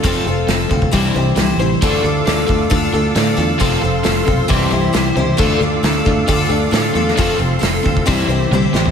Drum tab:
HH |o---o---o---o---|o---o---o---o---|o---o---o---o---|o---o---o---o---|
SD |----o-------o---|----o-------o---|----o-------o---|----o-------o--o|
T1 |----------------|----------------|----------------|----------------|
FT |----------------|----------------|----------------|----------------|
BD |o-----ooo-------|o-----o-o-------|o-----o-o-------|o-----o-o-------|

HH |o---o---o-------|
SD |----o---------o-|
T1 |------------o---|
FT |---------------o|
BD |o-----ooo-------|